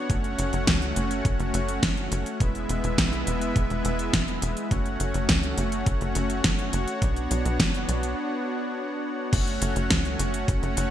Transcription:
Already playing: C#5 F#5
0.10 F#1 A3 C#4 F#4, kick, closed hi-hat
0.24 closed hi-hat
0.39 F#1, closed hi-hat
0.53 F#1, closed hi-hat
0.67 C#2, kick, snare, closed hi-hat
0.82 closed hi-hat
0.96 F#1, closed hi-hat
1.11 closed hi-hat
1.25 F#1, kick, closed hi-hat
1.39 F#1, closed hi-hat
1.54 F#1, closed hi-hat
1.68 closed hi-hat
1.83 F#1, kick, snare, closed hi-hat
1.97 closed hi-hat
2.12 F#1, closed hi-hat
2.26 closed hi-hat
2.40 E1 G#3 B3 E4 B4 E5, kick, closed hi-hat
2.55 closed hi-hat
2.69 E1, closed hi-hat
2.84 E1, closed hi-hat
2.98 B1, kick, snare, closed hi-hat
3.13 closed hi-hat
3.27 E1, closed hi-hat
3.41 closed hi-hat
3.56 E1, kick, closed hi-hat
3.70 E1, closed hi-hat
3.85 E1, closed hi-hat
3.99 closed hi-hat
4.13 E1, kick, snare, closed hi-hat
4.28 closed hi-hat
4.42 E1, closed hi-hat
4.57 closed hi-hat
4.71 F#1 A3 C#4 F#4 C#5 F#5, kick, closed hi-hat
4.86 closed hi-hat
5.00 F#1, closed hi-hat
5.14 F#1, closed hi-hat
5.29 C#2, kick, snare, closed hi-hat
5.43 closed hi-hat
5.58 F#1, closed hi-hat
5.72 closed hi-hat
5.86 F#1, kick, closed hi-hat
6.01 F#1, closed hi-hat
6.15 F#1, closed hi-hat
6.30 closed hi-hat
6.44 F#1, kick, snare, closed hi-hat
6.59 closed hi-hat
6.73 F#1, closed hi-hat
6.88 closed hi-hat
7.02 B1 B3 D4, kick, closed hi-hat
7.16 closed hi-hat
7.31 B1, closed hi-hat
7.45 B1, closed hi-hat
7.60 F#1, kick, snare, closed hi-hat
7.74 closed hi-hat
7.89 B1, closed hi-hat
8.03 closed hi-hat
9.33 F#1 A3 C#4 F#4 C#5 F#5, kick, closed hi-hat, crash
9.47 closed hi-hat
9.62 F#1, closed hi-hat
9.76 F#1, closed hi-hat
9.90 C#2, kick, snare, closed hi-hat
10.05 closed hi-hat
10.19 F#1, closed hi-hat
10.34 closed hi-hat
10.48 F#1, kick, closed hi-hat
10.63 F#1, closed hi-hat
10.77 F#1, closed hi-hat

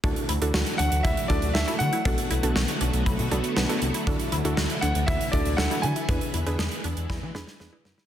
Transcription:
0.04 D2 E3 F#3 A3 D4 E4 F#4 A4, kick, closed hi-hat
0.16 closed hi-hat
0.29 D2 E4, closed hi-hat
0.42 D2 D4 E4 F#4 A4, closed hi-hat
0.54 D2 F#4, snare
0.66 closed hi-hat
0.78 D2 D4 F#5, closed hi-hat
0.92 D2, closed hi-hat
1.03 D2 E4 E5, kick, closed hi-hat
1.17 closed hi-hat
1.28 D2 D4 E4 F#4 A4 D5, kick, closed hi-hat
1.42 D2, closed hi-hat
1.53 D2 D4 E4 F#4 A4 E5, snare
1.68 D4 E4 F#4 A4, closed hi-hat
1.79 D3 F#5, closed hi-hat
1.93 E4, closed hi-hat
2.05 B1 D3 B3 D4 F#4 A4, kick, closed hi-hat
2.18 closed hi-hat
2.31 B1 E4, closed hi-hat
2.43 B1 B3 D4 F#4 A4, closed hi-hat
2.56 B1 F#4, snare
2.68 closed hi-hat
2.81 B1 D4, closed hi-hat
2.93 B1, closed hi-hat
3.06 B1 E4, kick, closed hi-hat
3.19 B2, closed hi-hat
3.31 B1 B3 D4 F#4 A4, closed hi-hat
3.44 closed hi-hat
3.57 B1 B3 D4 F#4 B4, snare
3.69 B3 D4 E4 F#4 A4, closed hi-hat
3.82 C2, closed hi-hat
3.94 E4, closed hi-hat
4.07 D2 E3 D4 E4 F#4 A4, kick, closed hi-hat
4.19 closed hi-hat
4.32 D2 E4, closed hi-hat
4.45 D2 D4 E4 F#4 A4, closed hi-hat
4.57 D2 F#4, snare
4.70 closed hi-hat
4.81 D2 D4 F#5, closed hi-hat
4.95 D2, closed hi-hat
5.06 D2 E4 E5, kick, closed hi-hat
5.21 closed hi-hat
5.32 D2 D4 E4 F#4 A4 D5, kick, closed hi-hat
5.45 D2, closed hi-hat
5.57 D2 D4 E4 F#4 A4 F#5, snare
5.71 D4 E4 F#4 A4, closed hi-hat
5.82 D3 G#5, closed hi-hat
5.96 E4, closed hi-hat
6.09 E2 G#3 B3 D4 E4 G#4 B4, kick, closed hi-hat
6.21 closed hi-hat
6.34 E2 E4, closed hi-hat
6.46 E2 D4 E4 G#4 B4, closed hi-hat
6.59 E2 G#4, snare
6.71 closed hi-hat
6.84 E2 D4, closed hi-hat
6.97 E2, closed hi-hat
7.10 E2 E4, kick, snare
7.22 E3
7.35 E2 D4 E4 G#4 B4, snare
7.47 snare
7.60 E2 D4 E4 G#4 B4, snare
7.73 D4 E4 G#4 B4
7.85 F#2, snare
7.98 E4, snare

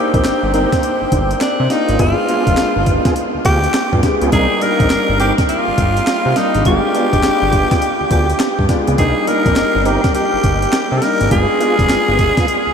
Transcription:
Already playing: A#3 C4 D4 D#4 G4
0.14 A#1 C4 D#4 A#4, kick, closed hi-hat
0.25 snare, clap, closed hi-hat
0.43 G1
0.53 C4 D#4 A#4, closed hi-hat
0.72 kick, snare, closed hi-hat
0.83 closed hi-hat
1.02 G1
1.12 G1, kick, closed hi-hat
1.31 closed hi-hat
1.41 D4, snare, clap, closed hi-hat
1.60 C3
1.70 A#3 D4 D#4 F4, snare, closed hi-hat
1.89 G#1, closed hi-hat
1.99 G1 G#3 B3 D4 F4 G#4, kick, closed hi-hat
2.28 G#3 A#3 B3 D4 F4 G#4, closed hi-hat
2.35 B3
2.47 F1, kick, closed hi-hat
2.57 G1, snare, clap, closed hi-hat
2.76 G1
2.86 kick, closed hi-hat
3.05 B3 F4 G#4, kick, snare, closed hi-hat
3.16 closed hi-hat
3.34 D2
3.44 D2 B3 F4 G4 G#4, kick, closed hi-hat
3.64 closed hi-hat
3.74 snare, clap, closed hi-hat
3.92 G2 B3 F4 G#4, kick
4.03 G#3 B3 D4 G4, kick, snare, closed hi-hat
4.21 C#2 B3 F4 G#4, closed hi-hat
4.32 C2 G3 A#3 C4 D4 D#4 G#4 A#4, kick, closed hi-hat
4.61 G3 A#3 D4 D#4 A#4, closed hi-hat
4.80 A#1 C4 D#4 A#4, kick, closed hi-hat
4.90 snare, clap, closed hi-hat
5.09 G1
5.20 C4 D#4 G4 A#4, closed hi-hat
5.38 kick, snare, closed hi-hat
5.49 F4, closed hi-hat
5.68 G1
5.78 G1, kick, closed hi-hat
5.97 closed hi-hat
6.07 snare, clap, closed hi-hat
6.26 C3
6.36 G3 A#3 D4 D#4, snare, closed hi-hat
6.55 G#1, closed hi-hat
6.65 G1 G#3 B3 D4 F4 G4 G#4, kick, closed hi-hat
6.94 G#3 B3 D4 F4 G#4, closed hi-hat
7.13 F1, kick, closed hi-hat
7.23 G1, snare, clap, closed hi-hat
7.42 G1
7.53 kick, closed hi-hat
7.71 B3 F4 G#4, kick, snare, closed hi-hat
7.82 closed hi-hat
8.01 D2
8.11 D2 B3 F4 G4 G#4, kick, closed hi-hat
8.30 closed hi-hat
8.40 snare, clap, closed hi-hat
8.59 G2, kick
8.69 G#3 B3 D4 F4, kick, snare, closed hi-hat
8.87 C#2 B3 F4 G#4, closed hi-hat
8.98 C2 G3 A#3 C4 D4 D#4 G#4 A#4, kick, closed hi-hat
9.27 G3 A#3 D4 D#4 A#4, closed hi-hat
9.46 A#1 C4 D#4 A#4, kick, closed hi-hat
9.56 G1, snare, clap, closed hi-hat
9.76 G1
9.85 C4 D#4 G4 A#4, closed hi-hat
10.04 kick, snare, closed hi-hat
10.15 G4, closed hi-hat
10.34 G1
10.44 G1, kick, closed hi-hat
10.62 closed hi-hat
10.73 snare, clap, closed hi-hat
10.92 C3
10.98 A4
11.02 G3 A#3 D4 D#4 A#4, snare, closed hi-hat
11.21 G#1, closed hi-hat
11.31 G1 G#3 B3 D4 F4 G#4, kick, closed hi-hat
11.60 G#3 B3 D4 F4 G#4, closed hi-hat
11.79 F1, kick, closed hi-hat
11.89 G1, snare, clap, closed hi-hat
12.08 G1
12.19 kick, closed hi-hat
12.37 B3 F4 G#4, kick, snare, closed hi-hat
12.48 closed hi-hat
12.67 D2

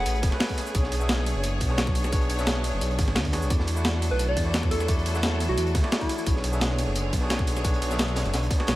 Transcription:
Already playing: A3 C#4 G#4 B4 E5 F#5
0.06 A1, closed hi-hat, cabasa
0.15 closed hi-hat
0.23 E1, kick, snare, closed hi-hat, ride, cabasa
0.31 A3 C#4 G#4 B4, snare
0.40 snare, closed hi-hat, open hi-hat, cabasa
0.49 kick, closed hi-hat
0.58 snare, closed hi-hat, ride
0.67 closed hi-hat, cabasa
0.74 B1 B3 D4 G#4 C#5, kick, closed hi-hat, cabasa
0.83 snare
0.92 B1, closed hi-hat, ride
0.99 B3 D4 G#4 E5, cabasa
1.09 snare, closed hi-hat, cabasa
1.18 snare
1.26 closed hi-hat, ride, cabasa
1.35 F#1
1.44 closed hi-hat, cabasa
1.60 B1, kick, closed hi-hat, ride, cabasa
1.69 B3 D4 G#4 C#5
1.78 snare, closed hi-hat, cabasa
1.87 kick, closed hi-hat
1.95 closed hi-hat, ride
2.04 snare, cabasa
2.12 B3 D4 G#4 C#5, kick, closed hi-hat, cabasa
2.21 closed hi-hat
2.29 B1, closed hi-hat, ride
2.37 B3 D4 G#4 E5, snare, closed hi-hat, cabasa
2.47 snare, closed hi-hat, cabasa
2.64 closed hi-hat, ride, cabasa
2.73 F#1
2.81 B1, closed hi-hat, cabasa
2.91 closed hi-hat
2.99 G#1, kick, snare, closed hi-hat, ride, cabasa
3.08 snare
3.15 D2, snare, closed hi-hat, open hi-hat, cabasa
3.25 kick, closed hi-hat
3.32 E2 B3 D4 G#4 C#5, snare, closed hi-hat, ride
3.42 B1, closed hi-hat, cabasa
3.50 E2 F#3 A3 E4 F#4 A4 D5, kick, closed hi-hat, cabasa
3.59 snare
3.67 E2, closed hi-hat, ride
3.75 A3 E4 F#4 F#5, cabasa
3.85 snare, closed hi-hat, cabasa
3.94 snare
4.02 closed hi-hat, ride, cabasa
4.11 B1 B4
4.19 closed hi-hat, cabasa
4.28 D5
4.37 E2, kick, closed hi-hat, ride, cabasa
4.45 A3 E4 F#4 D5
4.54 snare, closed hi-hat, cabasa
4.63 kick, closed hi-hat
4.71 A4, closed hi-hat, ride
4.80 snare, cabasa
4.88 A3 E4 F#4 D5, kick, closed hi-hat, cabasa
4.99 closed hi-hat
5.06 E2, closed hi-hat, ride
5.13 A3 E4 F#4 F#5, snare, cabasa
5.23 snare, closed hi-hat, cabasa
5.40 closed hi-hat, ride, cabasa
5.49 B1 F#4
5.57 E2, closed hi-hat, cabasa
5.67 closed hi-hat
5.74 D2, kick, snare, closed hi-hat, ride, cabasa
5.83 A3 E4 F#4 D5, snare
5.92 snare, closed hi-hat, open hi-hat, cabasa
6.01 E4, kick, closed hi-hat
6.09 snare, closed hi-hat, ride
6.18 E4, closed hi-hat, cabasa
6.26 B1 D3 B3 D4 E4 G#4 C#5, kick, closed hi-hat, cabasa
6.36 snare
6.44 B1, closed hi-hat, ride
6.52 B3 D4 G#4 E5, cabasa
6.61 snare, closed hi-hat, cabasa
6.70 snare
6.78 closed hi-hat, ride, cabasa
6.87 F#1
6.96 closed hi-hat, cabasa
7.13 B1, kick, closed hi-hat, ride, cabasa
7.20 B3 D4 G#4 C#5
7.30 snare, closed hi-hat, cabasa
7.39 kick, closed hi-hat
7.47 closed hi-hat, ride
7.57 snare, cabasa
7.64 B3 D4 G#4 C#5, kick, closed hi-hat, cabasa
7.74 closed hi-hat
7.82 B1, closed hi-hat, ride, cabasa
7.89 B3 D4 G#4 E5, snare, closed hi-hat, cabasa
7.99 snare, closed hi-hat, cabasa
8.08 closed hi-hat
8.16 snare, closed hi-hat, ride, cabasa
8.25 F#1, snare, closed hi-hat
8.34 B1, snare, closed hi-hat, cabasa
8.43 closed hi-hat
8.51 kick, snare, closed hi-hat, ride, cabasa
8.58 B3 D4 G#4 C#5, snare
8.67 B1, snare, closed hi-hat, cabasa

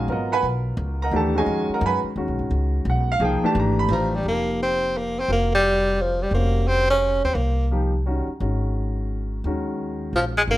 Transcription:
0.08 G#1 F#3 B3 F4 A#4 F#5 A#5
0.12 D#5
0.32 B4 F#5 G#5 B5
0.43 B1
0.77 C#2
1.02 A#4 D#5 F#5 A#5
1.11 D#2 E3 A3 D4 G4
1.16 A4 A5
1.35 D#3 G#3 C#4 F#4 G#4 C#5 D#5 G#5
1.46 F2
1.69 muted upright bass stroke
1.74 A#4 D#5 F#5 A#5
1.81 F#2
1.86 B4 F#5 G#5 B5
2.03 muted upright bass stroke
2.16 D#2 D#3 G#3 C#4 F#4
2.28 B1
2.39 G#1
2.51 C#2
2.85 B1
2.90 F#5
3.12 F5
3.20 C2 F3 A#3 D#4 G#4
3.25 G5
3.42 E3 A3 D4 G4 A5, muted upright bass stroke
3.55 G#1
3.59 A#5
3.79 B5
3.89 A1 F3
3.93 A#5
4.15 G3
4.23 F1 F3 A#3 D#4 G4
4.28 A#3
4.63 C4
4.97 A#3
5.20 C4
5.28 F1 C4 F4 F#4 A#4
5.32 A#3
5.55 G3
6.02 F3
6.23 G3
6.31 F1 G3 A#3 C#4 F#4 C5
6.68 C4
6.90 C#4
7.24 D#2 C4
7.35 C2 A#3
7.71 F3 A#3 D#4 G4
8.06 D#3 G3 C#4 F#4
8.27 muted upright bass stroke
8.40 G#1 D#3 G#3 C#4 F#4
9.44 D#2 D#3 G#3 C#4 F#4
10.13 A#1 F3
10.38 G#3
10.48 G#1 D#3 G#3 A#3 C#4 F#4

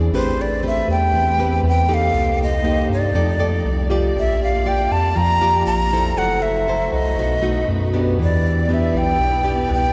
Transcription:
Already playing: E2 C4 G#4 D5
0.12 A1 A3 C4 D4 G4 B4 C5
0.41 D5
0.63 C4 G4 B4 E5
0.88 E2 G4 G5
1.12 E2 E3
1.39 C4 G4 B4
1.63 E2
1.69 G5
1.89 A#3 D#4 G4 A4
1.94 F5
2.13 C2 C3 A#3 D#4 C5
2.43 D#5
2.64 A#3 D#4 G4
2.89 G2
2.93 D5
3.14 F2 F3 A3 D#4 A4 D5
3.39 D#4 A4 D5
3.65 C2
3.90 F4 G4 D5
4.16 A#1 A#3 F4 G4 E5
4.43 F5
4.66 F4 G4 D5 G5
4.91 F2 A5
5.15 F2 F3 A#5
5.41 F4 G4 D5
5.66 A#1 A#5
5.93 E4 A4 C5
6.17 F#1 F#3 A3 E4 F#4 A4 C5 F#5
6.42 E5
6.68 E4 A4 C5
6.92 C2 C5 D#5
7.17 B1 B2 A3 D#4 F#4 B4
7.42 A3 D#4 F#4
7.68 F#2
7.93 B3 D4 G4
8.18 E2 E3 B3 E4 G4 D5
8.23 D5
8.69 B3 D4 G4
8.73 E5
8.94 B1 E4 G5
9.19 B1 B2
9.44 B3 D4 G4
9.69 C2 B4
9.73 G5

